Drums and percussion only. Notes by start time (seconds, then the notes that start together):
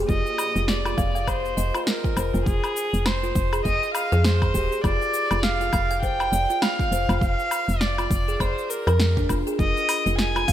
0.09 kick, cabasa
0.26 cabasa
0.38 cabasa, low woodblock
0.56 cabasa
0.68 snare, cabasa
0.85 cabasa, low woodblock
0.98 kick, cabasa
1.16 cabasa
1.28 kick, cabasa, low woodblock
1.45 cabasa
1.58 cabasa
1.75 cabasa, low woodblock
1.87 snare, cabasa
2.04 kick, cabasa
2.17 cabasa, low woodblock
2.35 cabasa
2.46 kick, cabasa
2.64 cabasa, low woodblock
2.77 cabasa
2.94 cabasa
3.06 snare, cabasa, low woodblock
3.24 cabasa
3.35 kick, cabasa
3.53 cabasa, low woodblock
3.65 kick, cabasa
3.83 cabasa
3.95 cabasa, low woodblock
4.12 cabasa
4.25 snare, cabasa
4.42 kick, cabasa, low woodblock
4.54 kick, cabasa
4.72 cabasa
4.84 kick, cabasa, low woodblock
5.02 cabasa
5.14 cabasa
5.31 cabasa, low woodblock
5.43 snare, cabasa
5.61 cabasa
5.73 kick, cabasa, low woodblock
5.91 cabasa
6.03 kick, cabasa
6.20 cabasa, low woodblock
6.33 cabasa
6.50 cabasa
6.62 snare, cabasa, low woodblock
6.79 kick, cabasa
6.93 cabasa
7.09 cabasa, low woodblock
7.21 kick, cabasa
7.39 cabasa
7.51 cabasa, low woodblock
7.69 cabasa
7.81 snare, cabasa
7.98 cabasa, low woodblock
8.11 kick, cabasa
8.29 cabasa
8.40 kick, cabasa, low woodblock
8.58 cabasa
8.71 cabasa
8.87 cabasa, low woodblock
9.00 snare, cabasa
9.17 kick, cabasa
9.29 kick, cabasa, low woodblock
9.47 cabasa
9.59 kick, cabasa
9.76 tabla na, cabasa
9.89 open hi-hat, tabla tin, cabasa, low woodblock
10.07 cabasa
10.19 snare, cabasa
10.36 tabla na, cabasa, low woodblock
10.48 kick, open hi-hat, tabla ge, cabasa